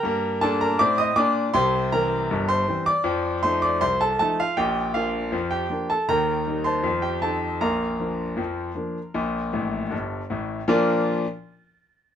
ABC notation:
X:1
M:2/4
L:1/16
Q:1/4=79
K:Bb
V:1 name="Grand piano"
[Bgb]2 [Aa] [Bb] [dd'] [ee'] [dd']2 | [cgc']2 [Bb]3 [cc']2 [dd']- | [dd']2 [cc'] [dd'] [cc'] [Aa] [Aa] [Ff] | [Gg]2 [Ff]3 [Gg]2 [Aa] |
[Bgb]3 [cac']2 [Gg] [Aa]2 | [Bfb]8- | [Bfb]4 z4 | [B,,F,DFBd]2 z6 |]
V:2 name="Grand piano" clef=bass
[G,,B,]2 [B,,D]2 [A,,C]2 [B,,D]2 | [C,,C,]2 [=E,G,C]2 [G,,,G,,]2 [E,G,C]2 | [F,,F,]2 [F,A,E]2 [C,,C,]2 [F,A,E]2 | [B,,,B,,]2 [F,B,D]2 [F,,F,]2 [F,B,D]2 |
[E,,E,]2 [G,B,E]2 [F,,F,]2 [F,CE]2 | [B,,,B,,]2 [F,B,D]2 [F,,F,]2 [F,B,D]2 | [B,,,B,,]2 [A,,,A,,]2 [G,,,G,,]2 [A,,,A,,]2 | z8 |]